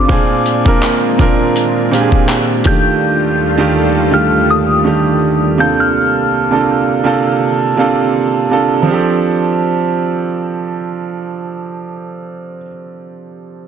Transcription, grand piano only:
0.00 0.09 C4 medium
0.00 0.10 D4 medium
0.00 0.12 G4 medium
0.00 0.11 C5 medium
0.08 0.54 A#2 loud
0.08 0.55 C4 medium
0.08 0.55 D4 medium
0.08 0.55 F4 loud
0.08 0.56 G#4 loud
0.65 1.09 A#2 medium
0.65 1.10 C4 medium
0.65 1.10 D4 medium
0.65 1.10 F4 medium
0.65 1.11 A#4 loud
1.18 1.79 A#2 loud
1.18 1.80 C4 medium
1.18 1.80 D4 medium
1.18 1.80 F4 medium
1.18 1.81 A#4 loud
1.91 2.52 A#2 loud
1.91 2.53 C4 medium
1.91 2.53 D4 medium
1.91 2.54 F4 medium
1.91 2.00 G4 medium
2.01 2.57 G#4 loud
2.65 3.39 D#3 medium
2.65 3.40 A3 medium
2.65 3.40 D4 medium
2.65 3.41 F4 medium
2.65 3.41 G4 loud
3.58 4.02 D#3 medium
3.58 4.02 A3 medium
3.58 4.03 D4 medium
3.58 4.03 F4 medium
3.58 4.03 G4 loud
4.11 4.72 D#3 medium
4.11 4.72 A3 medium
4.11 4.73 D4 medium
4.11 4.73 F4 medium
4.11 4.73 G4 medium
4.84 5.58 D#3 medium
4.84 5.58 A3 medium
4.84 5.57 D4 medium
4.84 5.58 F4 medium
4.84 5.59 G4 medium
5.57 6.32 C3 medium
5.57 6.33 A#3 medium
5.57 6.33 D4 medium
5.57 6.33 F4 medium
5.57 6.34 A4 medium
6.50 6.95 C3 medium
6.50 6.95 A#3 medium
6.50 6.95 D4 medium
6.50 6.96 F4 medium
6.50 6.96 A4 medium
7.04 7.65 C3 loud
7.04 7.65 A#3 medium
7.04 7.65 D4 medium
7.04 7.66 F4 medium
7.04 7.66 A4 loud
7.77 8.38 C3 medium
7.77 8.38 A#3 medium
7.77 8.39 D4 medium
7.77 8.39 F4 medium
7.77 8.39 A4 loud
8.50 8.81 C3 medium
8.50 8.81 A#3 medium
8.50 8.81 D4 medium
8.50 8.82 F4 medium
8.50 8.82 A4 loud
8.82 12.57 F3 medium
8.82 12.60 C4 medium
8.88 12.63 D4 medium
8.88 12.66 G4 medium
8.94 12.69 A4 medium

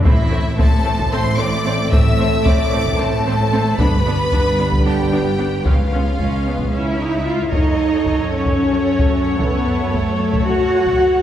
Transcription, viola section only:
0.05 0.14 A3 medium
0.05 0.13 C4 medium
0.31 0.40 A3 medium
0.31 0.39 C4 medium
0.58 0.66 A3 medium
0.58 0.66 C4 medium
0.85 0.93 A3 soft
0.85 0.93 C4 soft
1.12 1.20 A3 medium
1.12 1.20 C4 medium
1.38 1.46 A3 medium
1.38 1.46 C4 medium
1.65 1.73 A3 medium
1.65 1.73 C4 medium
1.92 2.00 A3 medium
1.92 2.00 C4 medium
2.19 2.27 A3 medium
2.19 2.27 C4 medium
2.46 2.54 A3 medium
2.46 2.54 C4 medium
2.73 2.81 A3 soft
2.73 2.81 C4 soft
2.99 3.07 A3 medium
2.99 3.07 C4 medium
3.26 3.34 A3 medium
3.26 3.34 C4 medium
3.53 3.61 A3 medium
3.53 3.61 C4 medium
3.79 3.88 B3 medium
3.79 3.87 D4 medium
4.06 4.14 B3 medium
4.06 4.14 D4 soft
4.32 4.40 B3 soft
4.32 4.40 D4 soft
4.59 4.67 B3 soft
4.59 4.67 D4 soft
4.86 4.94 B3 soft
4.86 4.94 D4 soft
5.12 5.20 B3 soft
5.12 5.20 D4 soft
5.39 5.47 B3 soft
5.39 5.47 D4 soft
5.65 5.73 B3 soft
5.65 5.73 C#4 soft
5.92 6.00 B3 soft
5.92 6.00 C#4 soft
6.18 6.43 C#4 soft
6.46 6.72 B3 soft
6.72 6.98 C#4 soft
6.99 7.26 D#4 medium
7.26 7.52 F4 soft
7.52 11.22 A4 soft
7.52 11.22 C#5 soft

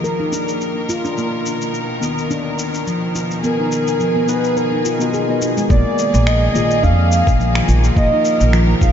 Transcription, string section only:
0.00 5.66 D#3 medium
0.00 1.13 A#3 medium
0.00 3.40 A#4 medium
1.17 5.66 B2 medium
3.44 5.68 G#4 medium
5.70 8.92 D#3 medium
5.70 8.92 A#3 medium
5.70 7.94 G#4 medium
7.97 8.92 A#4 medium

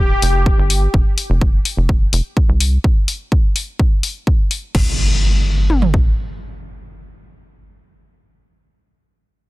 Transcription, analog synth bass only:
0.00 0.16 D#1 medium
0.22 0.52 F1 loud
0.58 0.88 G1 loud
0.94 1.02 F1 loud
1.30 1.59 F1 medium
1.77 2.07 F1 medium
2.13 2.21 F1 loud
2.49 2.78 C2 medium
4.75 6.14 G1 medium

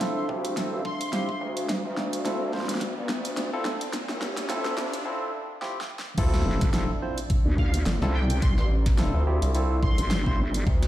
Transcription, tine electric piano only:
0.01 0.25 C4 medium
0.01 0.25 E4 medium
0.01 0.25 F4 medium
0.01 0.25 A4 medium
0.29 0.54 C4 medium
0.29 0.54 E4 medium
0.29 0.54 F4 medium
0.29 0.54 G4 medium
0.57 0.81 C4 medium
0.57 0.81 E4 medium
0.57 0.81 F4 medium
0.57 0.81 A4 medium
1.13 1.29 C4 medium
1.13 1.29 E4 medium
1.13 1.29 F4 medium
1.13 1.29 G4 medium
2.25 2.42 C4 medium
2.25 2.42 E4 medium
2.25 2.41 F4 medium
2.25 2.42 A4 medium
2.53 2.70 C4 medium
2.53 2.70 E4 medium
2.53 2.69 F4 medium
2.53 2.70 C5 medium
3.53 3.66 C4 medium
3.53 3.66 E4 medium
3.53 3.66 F4 medium
3.53 3.66 A4 loud
4.49 4.73 C4 medium
4.49 4.73 E4 medium
4.49 4.73 F4 medium
4.49 4.73 A4 loud
4.77 5.03 C4 medium
4.77 5.03 E4 medium
4.77 5.03 F4 medium
4.77 5.03 G4 medium
5.05 5.29 C4 medium
5.05 5.29 E4 medium
5.05 5.29 F4 medium
5.05 5.29 A4 medium
5.61 5.78 C4 medium
5.61 5.78 E4 medium
5.61 5.78 F4 medium
5.61 5.78 G4 medium
6.18 6.69 C4 loud
6.18 6.69 E4 medium
6.18 6.69 F4 medium
6.18 6.69 A4 loud
6.74 6.90 C4 medium
6.74 6.90 E4 medium
6.74 6.90 F4 medium
6.74 6.90 A4 medium
7.02 7.18 C4 medium
7.02 7.18 E4 medium
7.02 7.18 F4 medium
7.02 7.18 C5 medium
8.02 8.15 C4 medium
8.02 8.15 E4 medium
8.02 8.15 F4 medium
8.02 8.15 A4 loud
8.99 9.22 C4 medium
8.99 9.22 E4 medium
8.99 9.22 F4 medium
8.99 9.22 A4 loud
9.27 9.52 C4 medium
9.27 9.52 E4 medium
9.27 9.52 F4 medium
9.27 9.52 G4 medium
9.55 9.78 C4 medium
9.55 9.78 E4 medium
9.55 9.78 F4 medium
9.55 9.78 A4 medium
10.27 10.39 C4 medium
10.27 10.39 E4 medium
10.27 10.39 F4 medium
10.27 10.39 C5 medium

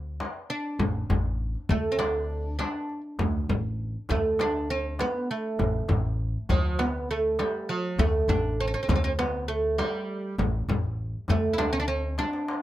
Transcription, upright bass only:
0.00 0.21 D2 medium
0.79 1.02 A1 medium
1.10 1.55 A1 medium
1.69 2.60 D2 medium
3.19 3.42 D2 medium
3.49 3.95 A1 medium
4.09 5.01 D2 medium
5.59 5.82 A1 medium
5.89 6.35 A1 medium
6.49 7.40 D2 medium
7.98 8.21 D2 medium
8.28 8.74 A1 medium
8.88 9.80 D2 medium
10.38 10.61 A1 medium
10.69 11.14 A1 medium
11.28 12.20 D2 medium

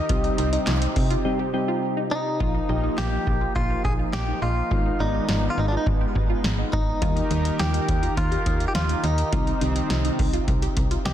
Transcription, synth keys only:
0.10 0.78 G3 medium
0.10 0.78 C4 medium
0.10 0.78 D#4 medium
0.10 0.78 G4 medium
1.25 1.42 G3 medium
1.25 1.42 C4 medium
1.25 1.42 D#4 medium
1.25 1.42 G4 loud
1.54 2.05 G3 medium
1.54 2.05 C4 medium
1.54 2.05 D#4 medium
1.54 2.05 G4 medium
2.40 2.57 F3 medium
2.40 2.57 A#3 medium
2.40 2.57 D#4 medium
2.40 2.57 F4 medium
2.69 3.37 F3 medium
2.69 3.37 A#3 medium
2.69 3.37 D#4 medium
2.69 3.37 G4 medium
4.71 4.88 D#3 medium
4.71 4.88 G#3 medium
4.71 4.88 B3 medium
4.71 4.88 D#4 medium
5.00 5.68 D#3 medium
5.00 5.68 G#3 medium
5.00 5.68 B3 medium
5.00 5.68 D5 medium
7.02 7.19 D#3 medium
7.02 7.19 G3 medium
7.02 7.19 A#3 medium
7.02 7.19 D#4 medium
7.31 7.99 D#3 medium
7.31 7.99 G3 medium
7.31 7.99 A#3 medium
7.31 7.99 D#4 medium
9.32 9.50 D#3 medium
9.32 9.50 G3 medium
9.32 9.50 C4 medium
9.32 9.49 D#4 medium
9.61 10.29 D#3 medium
9.61 10.29 G3 medium
9.61 10.29 C4 medium
9.61 10.29 D#4 medium
11.06 11.13 D#5 medium

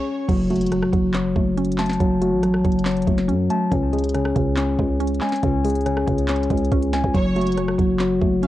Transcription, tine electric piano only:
0.00 0.29 C#4 medium
0.29 0.70 F#3 medium
0.50 1.79 F#4 medium
0.72 1.13 F#3 medium
1.14 1.99 F#3 medium
1.79 3.07 A5 medium
2.00 2.42 F#3 medium
2.22 3.50 F#4 medium
2.43 2.85 F#3 medium
2.86 3.72 F#3 medium
3.50 3.72 A5 medium
3.71 4.13 C#4 medium
3.93 5.22 G#4 medium
4.14 4.56 C#4 medium
4.57 5.42 C#4 medium
5.22 6.50 G#5 medium
5.43 5.85 C#4 medium
5.65 6.93 G#4 medium
5.86 6.28 C#4 medium
6.29 7.15 C#4 medium
6.93 7.15 G#5 medium
7.14 7.56 F#3 medium
7.36 8.47 F#4 medium
7.57 7.99 F#3 medium
8.00 8.47 F#3 medium

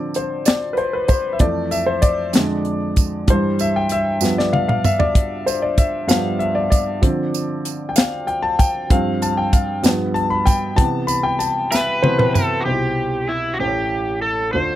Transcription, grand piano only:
0.00 1.36 D3 soft
0.00 1.37 F3 soft
0.00 1.37 C4 medium
0.00 0.19 D5 medium
0.16 0.48 C5 medium
0.46 0.72 D5 medium
0.73 0.78 B4 medium
0.78 0.83 C5 medium
0.93 1.08 B4 medium
1.09 1.34 C5 medium
1.33 1.40 E5 medium
1.39 1.81 F2 soft
1.39 1.82 E3 soft
1.39 1.82 A3 medium
1.39 1.69 D5 medium
1.71 1.88 E5 medium
1.86 2.03 C5 medium
2.02 2.92 D5 loud
2.33 2.75 F2 soft
2.33 2.75 D3 soft
2.33 2.76 G#3 medium
3.27 4.17 G2 medium
3.27 4.18 E3 soft
3.27 4.18 G3 medium
3.27 3.61 C5 medium
3.61 3.76 E5 medium
3.76 3.92 G5 medium
3.92 4.39 E5 medium
4.21 6.05 G2 soft
4.21 6.05 F3 soft
4.21 6.06 B3 medium
4.38 4.54 D5 medium
4.53 4.67 F5 medium
4.68 4.85 F5 medium
4.85 5.01 E5 medium
4.99 5.43 D5 loud
5.46 5.63 C5 medium
5.62 5.77 D5 medium
5.78 6.10 E5 medium
6.07 6.98 G2 soft
6.07 6.98 F3 soft
6.07 6.99 B3 medium
6.07 6.41 F5 medium
6.39 6.54 E5 medium
6.55 6.69 D5 medium
6.70 7.30 D5 medium
7.02 7.44 D3 soft
7.02 7.44 F3 soft
7.02 7.44 C4 medium
7.89 7.96 G5 medium
7.96 8.29 F5 medium
8.27 8.32 G5 medium
8.43 8.48 A5 medium
8.59 8.91 G5 medium
8.90 9.80 G2 medium
8.90 9.80 F3 soft
8.90 9.81 C4 medium
8.90 9.23 F5 medium
9.22 9.27 A5 medium
9.37 9.53 G5 medium
9.53 9.82 F5 medium
9.83 10.73 G2 medium
9.83 10.74 F3 soft
9.83 10.74 B3 medium
10.14 10.31 A5 medium
10.30 10.47 B5 medium
10.46 10.78 G5 medium
10.76 12.01 C3 medium
10.76 12.02 E3 soft
10.76 12.02 B3 medium
10.76 11.06 A5 loud
11.07 11.12 B5 loud
11.23 11.40 G5 medium
11.39 11.72 A5 medium
11.71 12.04 E5 medium
12.03 12.31 C3 soft
12.03 12.32 E3 soft
12.03 12.32 B3 medium
12.03 12.19 C5 medium
12.19 12.63 B4 medium
12.65 13.56 C2 soft
12.65 13.43 B2 soft
12.65 13.56 C3 soft
12.65 12.73 D#4 soft
12.65 13.43 G4 soft
12.65 13.43 C5 medium
12.72 13.46 E4 soft
13.59 14.51 A1 soft
13.59 14.50 A2 soft
13.59 14.37 A3 soft
13.59 14.37 E4 soft
13.59 14.37 G4 soft
13.59 13.67 C5 soft
13.67 14.41 C#5 soft
14.54 14.76 D2 soft
14.54 14.76 D3 soft
14.54 14.76 A3 soft
14.54 14.76 D4 soft
14.54 14.76 F4 soft
14.54 14.76 C5 medium

